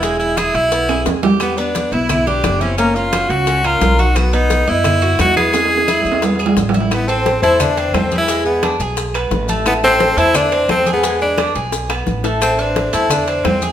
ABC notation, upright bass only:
X:1
M:4/4
L:1/8
Q:1/4=174
K:Ephr
V:1 name="Upright bass" clef=bass
E,,,3 B,,,3 E,,2- | E,,3 B,,,3 ^F,,,2- | ^F,,,3 ^C,,3 B,,,2- | B,,,3 ^F,,3 E,,2- |
E,,3 E,,3 A,,,2- | [K:Am] A,,,3 E,,3 E,,2- | E,,3 B,,,3 A,,,2- | A,,,3 E,,3 E,,2- |
E,,3 B,,,3 A,,,2- | A,,,3 E,,3 E,,2 |]